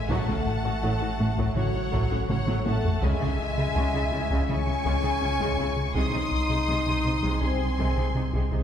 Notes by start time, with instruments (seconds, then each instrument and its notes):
Already playing: sub bass A1, felt piano G#6
0.09 double bass section A1, cello section A2, analog synth bass A2, viola section F#3 A3, french horn section A3, violin section F#5 A5, taiko
0.28 cello section A2, analog synth bass A3, viola section C#4 F#4, taiko mid
0.47 analog synth bass A2
0.64 cello section A2, analog synth bass A3, viola section C#4 F#4
0.83 double bass section A1, cello section A2, analog synth bass A2, viola section F#3 A3
1.01 cello section A2, analog synth bass A2, viola section C#4 F#4
1.19 double bass section A1, cello section A2, viola section A3 C#4, analog synth bass A3
1.37 cello section A2, analog synth bass A2, viola section F#3 A3, taiko
1.56 double bass section A1, cello section A2, analog synth bass A2, french horn section F#3, viola section C#4 F#4, violin section C#5 F#5, taiko mid
1.74 analog synth bass A2, taiko mid
1.92 double bass section A1, cello section A2, analog synth bass A2, viola section F#3 A3, taiko
2.11 cello section A2, analog synth bass A2, viola section C#4 F#4
2.29 double bass section A1, cello section A2, french horn section F#3, viola section A3 C#4, analog synth bass A3, violin section C#5 F#5, taiko mid
2.47 cello section A2, analog synth bass A2, viola section F#3 A3, taiko high
2.65 double bass section A1, cello section A2, analog synth bass A2, french horn section A3, viola section C#4 F#4, violin section F#5 A5, taiko high
2.84 analog synth bass A3, taiko low
3.02 sub bass C#2, analog synth bass C#2, double bass section C#2, cello section C#3, french horn section G#3, viola section G#3 C#4, violin section E5 G#5, taiko
3.21 cello section C#3, analog synth bass C#3, viola section E4 G#4, taiko mid
3.39 analog synth bass C#2
3.58 analog synth bass C#3, cello section C#3, viola section E4 G#4
3.75 analog synth bass C#2, double bass section C#2, cello section C#3, viola section G#3 C#4, felt piano G#5
3.94 analog synth bass C#2, cello section C#3, viola section E4 G#4
4.12 double bass section C#2, analog synth bass C#3, cello section C#3, viola section C#4 E4
4.30 analog synth bass C#2, cello section C#3, viola section G#3 C#4, taiko
4.49 analog synth bass C#2, double bass section C#2, cello section C#3, french horn section C#4, viola section E4 G#4, violin section G#5 C#6, taiko mid
4.67 analog synth bass C#2, taiko mid
4.85 double bass section C#2, analog synth bass C#2, cello section C#3, viola section G#3 C#4, taiko
5.03 analog synth bass C#2, cello section C#3, viola section E4 G#4
5.21 double bass section C#2, analog synth bass C#3, cello section C#3, viola section C#4 E4
5.40 analog synth bass C#2, cello section C#3, viola section G#3 C#4, taiko
5.58 analog synth bass C#2, double bass section C#2, cello section C#3, viola section E4 G#4
5.77 analog synth bass C#3
5.94 analog synth bass C2, sub bass C2, double bass section C2, cello section C3, viola section G#3 C4, french horn section D#4, violin section C6 D#6, taiko
6.12 analog synth bass C3, cello section C3, viola section D#4 G#4
6.31 analog synth bass C2
6.49 analog synth bass C3, cello section C3, viola section D#4 G#4
6.67 analog synth bass C2, double bass section C2, cello section C3, viola section G#3 C4
6.86 analog synth bass C2, cello section C3, viola section D#4 G#4
7.05 double bass section C2, analog synth bass C3, cello section C3, viola section C4 D#4
7.23 analog synth bass C2, cello section C3, viola section G#3 C4, taiko
7.41 analog synth bass C2, double bass section C2, cello section C3, french horn section C4, viola section D#4 G#4, violin section G#5 C6
7.60 analog synth bass C2
7.78 double bass section C2, analog synth bass C2, cello section C3, viola section G#3 C4, taiko
7.97 analog synth bass C2, cello section C3, viola section D#4 G#4
8.15 double bass section C2, analog synth bass C3, cello section C3, viola section C4 D#4
8.33 analog synth bass C2, cello section C3, viola section G#3 C4, taiko
8.51 analog synth bass C2, double bass section C2, cello section C3, viola section D#4 G#4